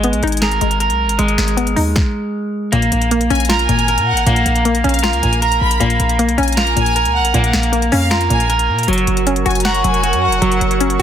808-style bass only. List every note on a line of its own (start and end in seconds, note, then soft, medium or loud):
0.00 0.15 G#1 loud
0.13 0.22 A#1 loud
0.23 0.60 G#1 loud
0.61 0.91 G#1 loud
0.90 1.06 B1 loud
1.04 1.18 G#1 loud
1.19 1.37 G#1 loud
1.38 1.75 G#1 loud
1.76 1.95 D#2 loud
2.73 2.91 A#1 loud
2.92 3.29 A#1 loud
3.30 3.67 A#1 loud
3.69 3.99 G#1 loud
3.98 4.14 A#2 loud
4.12 4.26 G#1 loud
4.26 4.45 A#1 loud
4.46 4.83 A#1 loud
4.84 5.15 A#1 loud
5.13 5.22 C#2 loud
5.23 5.60 A#1 loud
5.61 5.80 A#1 loud
5.81 5.99 A#1 loud
6.00 6.30 A#1 loud
6.28 6.38 B1 loud
6.38 6.75 A#1 loud
6.77 7.07 A#1 loud
7.05 7.21 C#2 loud
7.20 7.34 A#1 loud
7.34 7.53 A#1 loud
7.53 7.90 A#1 loud
7.92 8.29 F2 loud
8.30 8.70 A#1 loud
8.69 8.87 A#2 loud
8.88 9.07 F#1 loud
9.07 9.44 F#1 loud
9.46 9.83 F#1 loud
9.84 10.14 F1 loud
10.13 10.29 F#2 loud
10.27 10.41 F1 loud
10.42 10.60 F#1 loud
10.61 10.98 F#1 loud